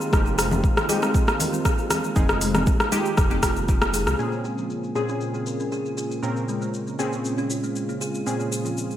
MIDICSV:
0, 0, Header, 1, 6, 480
1, 0, Start_track
1, 0, Tempo, 508475
1, 122, Time_signature, 4, 2, 24, 8
1, 8465, End_track
2, 0, Start_track
2, 0, Title_t, "Synth keys"
2, 0, Program_c, 0, 88
2, 119, Note_on_c, 0, 56, 87
2, 120, Note_on_c, 0, 63, 78
2, 120, Note_on_c, 0, 67, 94
2, 813, Note_off_c, 0, 56, 0
2, 813, Note_off_c, 0, 63, 0
2, 813, Note_off_c, 0, 67, 0
2, 840, Note_on_c, 0, 63, 84
2, 841, Note_on_c, 0, 56, 92
2, 841, Note_on_c, 0, 67, 104
2, 2013, Note_off_c, 0, 63, 0
2, 2014, Note_off_c, 0, 56, 0
2, 2014, Note_off_c, 0, 67, 0
2, 2037, Note_on_c, 0, 63, 86
2, 2037, Note_on_c, 0, 68, 97
2, 2038, Note_on_c, 0, 56, 91
2, 2732, Note_off_c, 0, 56, 0
2, 2732, Note_off_c, 0, 63, 0
2, 2732, Note_off_c, 0, 68, 0
2, 2755, Note_on_c, 0, 56, 97
2, 2756, Note_on_c, 0, 67, 108
2, 2757, Note_on_c, 0, 63, 86
2, 3931, Note_off_c, 0, 56, 0
2, 3931, Note_off_c, 0, 67, 0
2, 3932, Note_off_c, 0, 63, 0
2, 3954, Note_on_c, 0, 46, 73
2, 3954, Note_on_c, 0, 60, 72
2, 3956, Note_on_c, 0, 61, 71
2, 3956, Note_on_c, 0, 68, 89
2, 4650, Note_off_c, 0, 46, 0
2, 4650, Note_off_c, 0, 60, 0
2, 4651, Note_off_c, 0, 61, 0
2, 4651, Note_off_c, 0, 68, 0
2, 4676, Note_on_c, 0, 46, 85
2, 4677, Note_on_c, 0, 60, 73
2, 4677, Note_on_c, 0, 61, 79
2, 4677, Note_on_c, 0, 68, 96
2, 5851, Note_off_c, 0, 46, 0
2, 5852, Note_off_c, 0, 60, 0
2, 5852, Note_off_c, 0, 61, 0
2, 5852, Note_off_c, 0, 68, 0
2, 5877, Note_on_c, 0, 60, 69
2, 5878, Note_on_c, 0, 61, 71
2, 5878, Note_on_c, 0, 70, 86
2, 5879, Note_on_c, 0, 46, 79
2, 6572, Note_off_c, 0, 60, 0
2, 6572, Note_off_c, 0, 61, 0
2, 6572, Note_off_c, 0, 70, 0
2, 6573, Note_off_c, 0, 46, 0
2, 6597, Note_on_c, 0, 46, 84
2, 6598, Note_on_c, 0, 60, 79
2, 6598, Note_on_c, 0, 61, 80
2, 6598, Note_on_c, 0, 68, 88
2, 7772, Note_off_c, 0, 46, 0
2, 7772, Note_off_c, 0, 60, 0
2, 7772, Note_off_c, 0, 61, 0
2, 7772, Note_off_c, 0, 68, 0
2, 7801, Note_on_c, 0, 60, 72
2, 7802, Note_on_c, 0, 61, 70
2, 7803, Note_on_c, 0, 46, 80
2, 7803, Note_on_c, 0, 68, 84
2, 8465, Note_off_c, 0, 46, 0
2, 8465, Note_off_c, 0, 60, 0
2, 8465, Note_off_c, 0, 61, 0
2, 8465, Note_off_c, 0, 68, 0
2, 8465, End_track
3, 0, Start_track
3, 0, Title_t, "Kalimba"
3, 0, Program_c, 1, 108
3, 120, Note_on_c, 1, 58, 78
3, 234, Note_off_c, 1, 58, 0
3, 245, Note_on_c, 1, 58, 71
3, 308, Note_off_c, 1, 58, 0
3, 358, Note_on_c, 1, 68, 78
3, 473, Note_off_c, 1, 68, 0
3, 484, Note_on_c, 1, 53, 71
3, 588, Note_off_c, 1, 53, 0
3, 840, Note_on_c, 1, 68, 100
3, 909, Note_off_c, 1, 68, 0
3, 965, Note_on_c, 1, 60, 102
3, 1028, Note_off_c, 1, 60, 0
3, 1204, Note_on_c, 1, 58, 75
3, 1267, Note_off_c, 1, 58, 0
3, 1319, Note_on_c, 1, 70, 74
3, 1388, Note_off_c, 1, 70, 0
3, 1445, Note_on_c, 1, 60, 75
3, 1549, Note_off_c, 1, 60, 0
3, 1559, Note_on_c, 1, 68, 101
3, 1628, Note_off_c, 1, 68, 0
3, 1798, Note_on_c, 1, 68, 98
3, 1868, Note_off_c, 1, 68, 0
3, 2279, Note_on_c, 1, 56, 72
3, 2394, Note_off_c, 1, 56, 0
3, 2405, Note_on_c, 1, 58, 69
3, 2509, Note_off_c, 1, 58, 0
3, 2759, Note_on_c, 1, 68, 100
3, 2828, Note_off_c, 1, 68, 0
3, 3126, Note_on_c, 1, 60, 97
3, 3229, Note_off_c, 1, 60, 0
3, 3239, Note_on_c, 1, 65, 78
3, 3353, Note_off_c, 1, 65, 0
3, 3366, Note_on_c, 1, 58, 74
3, 3469, Note_off_c, 1, 58, 0
3, 3606, Note_on_c, 1, 58, 78
3, 3709, Note_off_c, 1, 58, 0
3, 3720, Note_on_c, 1, 68, 92
3, 3789, Note_off_c, 1, 68, 0
3, 3959, Note_on_c, 1, 58, 72
3, 4073, Note_off_c, 1, 58, 0
3, 4084, Note_on_c, 1, 58, 63
3, 4147, Note_off_c, 1, 58, 0
3, 4200, Note_on_c, 1, 68, 69
3, 4314, Note_off_c, 1, 68, 0
3, 4325, Note_on_c, 1, 53, 60
3, 4429, Note_off_c, 1, 53, 0
3, 4680, Note_on_c, 1, 68, 87
3, 4749, Note_off_c, 1, 68, 0
3, 4807, Note_on_c, 1, 61, 88
3, 4869, Note_off_c, 1, 61, 0
3, 5046, Note_on_c, 1, 58, 65
3, 5108, Note_off_c, 1, 58, 0
3, 5162, Note_on_c, 1, 70, 64
3, 5230, Note_off_c, 1, 70, 0
3, 5287, Note_on_c, 1, 61, 64
3, 5390, Note_off_c, 1, 61, 0
3, 5400, Note_on_c, 1, 68, 85
3, 5469, Note_off_c, 1, 68, 0
3, 5639, Note_on_c, 1, 68, 83
3, 5708, Note_off_c, 1, 68, 0
3, 6122, Note_on_c, 1, 56, 70
3, 6235, Note_off_c, 1, 56, 0
3, 6249, Note_on_c, 1, 58, 64
3, 6351, Note_off_c, 1, 58, 0
3, 6603, Note_on_c, 1, 68, 93
3, 6670, Note_off_c, 1, 68, 0
3, 6968, Note_on_c, 1, 61, 91
3, 7070, Note_off_c, 1, 61, 0
3, 7083, Note_on_c, 1, 65, 67
3, 7195, Note_off_c, 1, 65, 0
3, 7210, Note_on_c, 1, 58, 67
3, 7311, Note_off_c, 1, 58, 0
3, 7448, Note_on_c, 1, 58, 70
3, 7550, Note_off_c, 1, 58, 0
3, 7562, Note_on_c, 1, 68, 86
3, 7630, Note_off_c, 1, 68, 0
3, 7802, Note_on_c, 1, 58, 73
3, 7915, Note_off_c, 1, 58, 0
3, 7927, Note_on_c, 1, 58, 61
3, 7989, Note_off_c, 1, 58, 0
3, 8042, Note_on_c, 1, 68, 67
3, 8155, Note_off_c, 1, 68, 0
3, 8168, Note_on_c, 1, 53, 64
3, 8270, Note_off_c, 1, 53, 0
3, 8465, End_track
4, 0, Start_track
4, 0, Title_t, "Analog synth pad"
4, 0, Program_c, 2, 89
4, 0, Note_on_c, 2, 51, 82
4, 0, Note_on_c, 2, 56, 73
4, 0, Note_on_c, 2, 60, 78
4, 0, Note_on_c, 2, 65, 94
4, 3921, Note_off_c, 2, 56, 0
4, 3922, Note_off_c, 2, 60, 0
4, 3923, Note_off_c, 2, 51, 0
4, 3924, Note_off_c, 2, 65, 0
4, 3953, Note_on_c, 2, 49, 81
4, 3954, Note_on_c, 2, 58, 71
4, 3954, Note_on_c, 2, 65, 88
4, 3956, Note_on_c, 2, 56, 70
4, 7760, Note_off_c, 2, 58, 0
4, 7805, Note_on_c, 2, 72, 74
4, 8465, Note_off_c, 2, 49, 0
4, 8465, Note_off_c, 2, 56, 0
4, 8465, Note_off_c, 2, 65, 0
4, 8465, Note_off_c, 2, 72, 0
4, 8465, End_track
5, 0, Start_track
5, 0, Title_t, "Detuned saw bass"
5, 0, Program_c, 3, 39
5, 119, Note_on_c, 3, 29, 98
5, 653, Note_off_c, 3, 29, 0
5, 2040, Note_on_c, 3, 29, 93
5, 2573, Note_off_c, 3, 29, 0
5, 3000, Note_on_c, 3, 29, 86
5, 3838, Note_off_c, 3, 29, 0
5, 3844, Note_on_c, 3, 36, 82
5, 3918, Note_off_c, 3, 36, 0
5, 8465, End_track
6, 0, Start_track
6, 0, Title_t, "Drums"
6, 12, Note_on_c, 9, 82, 37
6, 106, Note_off_c, 9, 82, 0
6, 120, Note_on_c, 9, 36, 117
6, 126, Note_on_c, 9, 37, 74
6, 126, Note_on_c, 9, 82, 47
6, 215, Note_off_c, 9, 36, 0
6, 220, Note_off_c, 9, 37, 0
6, 221, Note_off_c, 9, 82, 0
6, 252, Note_on_c, 9, 82, 24
6, 346, Note_off_c, 9, 82, 0
6, 364, Note_on_c, 9, 37, 90
6, 364, Note_on_c, 9, 46, 89
6, 365, Note_on_c, 9, 82, 86
6, 459, Note_off_c, 9, 37, 0
6, 459, Note_off_c, 9, 46, 0
6, 459, Note_off_c, 9, 82, 0
6, 485, Note_on_c, 9, 64, 102
6, 491, Note_on_c, 9, 82, 35
6, 580, Note_off_c, 9, 64, 0
6, 585, Note_off_c, 9, 82, 0
6, 600, Note_on_c, 9, 36, 113
6, 604, Note_on_c, 9, 82, 43
6, 695, Note_off_c, 9, 36, 0
6, 699, Note_off_c, 9, 82, 0
6, 730, Note_on_c, 9, 37, 92
6, 730, Note_on_c, 9, 82, 25
6, 824, Note_off_c, 9, 37, 0
6, 824, Note_off_c, 9, 82, 0
6, 839, Note_on_c, 9, 63, 92
6, 844, Note_on_c, 9, 46, 79
6, 844, Note_on_c, 9, 82, 87
6, 934, Note_off_c, 9, 63, 0
6, 938, Note_off_c, 9, 46, 0
6, 938, Note_off_c, 9, 82, 0
6, 971, Note_on_c, 9, 37, 74
6, 971, Note_on_c, 9, 82, 36
6, 1065, Note_off_c, 9, 37, 0
6, 1065, Note_off_c, 9, 82, 0
6, 1080, Note_on_c, 9, 36, 110
6, 1083, Note_on_c, 9, 82, 48
6, 1174, Note_off_c, 9, 36, 0
6, 1177, Note_off_c, 9, 82, 0
6, 1209, Note_on_c, 9, 37, 90
6, 1209, Note_on_c, 9, 82, 24
6, 1304, Note_off_c, 9, 37, 0
6, 1304, Note_off_c, 9, 82, 0
6, 1321, Note_on_c, 9, 63, 66
6, 1323, Note_on_c, 9, 46, 92
6, 1324, Note_on_c, 9, 82, 86
6, 1327, Note_on_c, 9, 64, 86
6, 1415, Note_off_c, 9, 63, 0
6, 1418, Note_off_c, 9, 46, 0
6, 1418, Note_off_c, 9, 82, 0
6, 1422, Note_off_c, 9, 64, 0
6, 1449, Note_on_c, 9, 82, 37
6, 1450, Note_on_c, 9, 63, 56
6, 1544, Note_off_c, 9, 63, 0
6, 1544, Note_off_c, 9, 82, 0
6, 1560, Note_on_c, 9, 36, 107
6, 1560, Note_on_c, 9, 37, 73
6, 1561, Note_on_c, 9, 82, 49
6, 1655, Note_off_c, 9, 36, 0
6, 1655, Note_off_c, 9, 37, 0
6, 1655, Note_off_c, 9, 82, 0
6, 1685, Note_on_c, 9, 82, 27
6, 1779, Note_off_c, 9, 82, 0
6, 1799, Note_on_c, 9, 37, 91
6, 1799, Note_on_c, 9, 46, 82
6, 1799, Note_on_c, 9, 82, 91
6, 1800, Note_on_c, 9, 64, 92
6, 1893, Note_off_c, 9, 37, 0
6, 1893, Note_off_c, 9, 46, 0
6, 1893, Note_off_c, 9, 82, 0
6, 1895, Note_off_c, 9, 64, 0
6, 1926, Note_on_c, 9, 82, 36
6, 2020, Note_off_c, 9, 82, 0
6, 2037, Note_on_c, 9, 82, 50
6, 2040, Note_on_c, 9, 36, 112
6, 2042, Note_on_c, 9, 64, 82
6, 2132, Note_off_c, 9, 82, 0
6, 2134, Note_off_c, 9, 36, 0
6, 2136, Note_off_c, 9, 64, 0
6, 2164, Note_on_c, 9, 37, 91
6, 2164, Note_on_c, 9, 82, 24
6, 2258, Note_off_c, 9, 37, 0
6, 2258, Note_off_c, 9, 82, 0
6, 2278, Note_on_c, 9, 46, 92
6, 2278, Note_on_c, 9, 82, 89
6, 2372, Note_off_c, 9, 46, 0
6, 2372, Note_off_c, 9, 82, 0
6, 2403, Note_on_c, 9, 37, 81
6, 2404, Note_on_c, 9, 82, 37
6, 2408, Note_on_c, 9, 64, 106
6, 2498, Note_off_c, 9, 37, 0
6, 2498, Note_off_c, 9, 82, 0
6, 2503, Note_off_c, 9, 64, 0
6, 2517, Note_on_c, 9, 82, 45
6, 2520, Note_on_c, 9, 36, 115
6, 2611, Note_off_c, 9, 82, 0
6, 2614, Note_off_c, 9, 36, 0
6, 2644, Note_on_c, 9, 37, 94
6, 2645, Note_on_c, 9, 82, 26
6, 2739, Note_off_c, 9, 37, 0
6, 2739, Note_off_c, 9, 82, 0
6, 2757, Note_on_c, 9, 46, 83
6, 2757, Note_on_c, 9, 82, 87
6, 2760, Note_on_c, 9, 63, 90
6, 2851, Note_off_c, 9, 46, 0
6, 2851, Note_off_c, 9, 82, 0
6, 2855, Note_off_c, 9, 63, 0
6, 2885, Note_on_c, 9, 82, 36
6, 2979, Note_off_c, 9, 82, 0
6, 2997, Note_on_c, 9, 37, 77
6, 2997, Note_on_c, 9, 63, 58
6, 2997, Note_on_c, 9, 82, 46
6, 3000, Note_on_c, 9, 36, 117
6, 3092, Note_off_c, 9, 37, 0
6, 3092, Note_off_c, 9, 63, 0
6, 3092, Note_off_c, 9, 82, 0
6, 3094, Note_off_c, 9, 36, 0
6, 3123, Note_on_c, 9, 82, 25
6, 3217, Note_off_c, 9, 82, 0
6, 3236, Note_on_c, 9, 37, 93
6, 3236, Note_on_c, 9, 46, 94
6, 3236, Note_on_c, 9, 82, 85
6, 3237, Note_on_c, 9, 63, 57
6, 3240, Note_on_c, 9, 36, 60
6, 3330, Note_off_c, 9, 37, 0
6, 3330, Note_off_c, 9, 46, 0
6, 3331, Note_off_c, 9, 63, 0
6, 3331, Note_off_c, 9, 82, 0
6, 3334, Note_off_c, 9, 36, 0
6, 3362, Note_on_c, 9, 63, 55
6, 3364, Note_on_c, 9, 82, 37
6, 3457, Note_off_c, 9, 63, 0
6, 3458, Note_off_c, 9, 82, 0
6, 3477, Note_on_c, 9, 82, 48
6, 3479, Note_on_c, 9, 36, 107
6, 3571, Note_off_c, 9, 82, 0
6, 3574, Note_off_c, 9, 36, 0
6, 3603, Note_on_c, 9, 37, 100
6, 3603, Note_on_c, 9, 82, 28
6, 3697, Note_off_c, 9, 37, 0
6, 3697, Note_off_c, 9, 82, 0
6, 3717, Note_on_c, 9, 46, 84
6, 3717, Note_on_c, 9, 82, 90
6, 3721, Note_on_c, 9, 63, 61
6, 3811, Note_off_c, 9, 46, 0
6, 3811, Note_off_c, 9, 82, 0
6, 3815, Note_off_c, 9, 63, 0
6, 3842, Note_on_c, 9, 37, 80
6, 3842, Note_on_c, 9, 82, 37
6, 3936, Note_off_c, 9, 37, 0
6, 3936, Note_off_c, 9, 82, 0
6, 3957, Note_on_c, 9, 82, 44
6, 4052, Note_off_c, 9, 82, 0
6, 4085, Note_on_c, 9, 82, 21
6, 4179, Note_off_c, 9, 82, 0
6, 4196, Note_on_c, 9, 82, 82
6, 4291, Note_off_c, 9, 82, 0
6, 4325, Note_on_c, 9, 82, 33
6, 4419, Note_off_c, 9, 82, 0
6, 4438, Note_on_c, 9, 82, 42
6, 4532, Note_off_c, 9, 82, 0
6, 4566, Note_on_c, 9, 82, 23
6, 4660, Note_off_c, 9, 82, 0
6, 4678, Note_on_c, 9, 82, 81
6, 4772, Note_off_c, 9, 82, 0
6, 4803, Note_on_c, 9, 82, 34
6, 4898, Note_off_c, 9, 82, 0
6, 4917, Note_on_c, 9, 82, 46
6, 5012, Note_off_c, 9, 82, 0
6, 5044, Note_on_c, 9, 82, 24
6, 5138, Note_off_c, 9, 82, 0
6, 5158, Note_on_c, 9, 82, 84
6, 5252, Note_off_c, 9, 82, 0
6, 5286, Note_on_c, 9, 82, 35
6, 5380, Note_off_c, 9, 82, 0
6, 5401, Note_on_c, 9, 82, 46
6, 5495, Note_off_c, 9, 82, 0
6, 5528, Note_on_c, 9, 82, 25
6, 5622, Note_off_c, 9, 82, 0
6, 5642, Note_on_c, 9, 82, 83
6, 5736, Note_off_c, 9, 82, 0
6, 5769, Note_on_c, 9, 82, 34
6, 5863, Note_off_c, 9, 82, 0
6, 5882, Note_on_c, 9, 82, 43
6, 5976, Note_off_c, 9, 82, 0
6, 6008, Note_on_c, 9, 82, 23
6, 6102, Note_off_c, 9, 82, 0
6, 6122, Note_on_c, 9, 82, 83
6, 6217, Note_off_c, 9, 82, 0
6, 6248, Note_on_c, 9, 82, 35
6, 6342, Note_off_c, 9, 82, 0
6, 6361, Note_on_c, 9, 82, 43
6, 6456, Note_off_c, 9, 82, 0
6, 6488, Note_on_c, 9, 82, 25
6, 6582, Note_off_c, 9, 82, 0
6, 6601, Note_on_c, 9, 82, 87
6, 6695, Note_off_c, 9, 82, 0
6, 6728, Note_on_c, 9, 82, 34
6, 6822, Note_off_c, 9, 82, 0
6, 6842, Note_on_c, 9, 82, 49
6, 6937, Note_off_c, 9, 82, 0
6, 6968, Note_on_c, 9, 82, 24
6, 7063, Note_off_c, 9, 82, 0
6, 7082, Note_on_c, 9, 82, 87
6, 7176, Note_off_c, 9, 82, 0
6, 7208, Note_on_c, 9, 82, 36
6, 7302, Note_off_c, 9, 82, 0
6, 7322, Note_on_c, 9, 82, 47
6, 7416, Note_off_c, 9, 82, 0
6, 7450, Note_on_c, 9, 82, 26
6, 7545, Note_off_c, 9, 82, 0
6, 7564, Note_on_c, 9, 82, 86
6, 7658, Note_off_c, 9, 82, 0
6, 7691, Note_on_c, 9, 82, 36
6, 7785, Note_off_c, 9, 82, 0
6, 7805, Note_on_c, 9, 82, 50
6, 7900, Note_off_c, 9, 82, 0
6, 7931, Note_on_c, 9, 82, 23
6, 8025, Note_off_c, 9, 82, 0
6, 8045, Note_on_c, 9, 82, 88
6, 8140, Note_off_c, 9, 82, 0
6, 8169, Note_on_c, 9, 82, 36
6, 8263, Note_off_c, 9, 82, 0
6, 8283, Note_on_c, 9, 82, 44
6, 8378, Note_off_c, 9, 82, 0
6, 8409, Note_on_c, 9, 82, 25
6, 8465, Note_off_c, 9, 82, 0
6, 8465, End_track
0, 0, End_of_file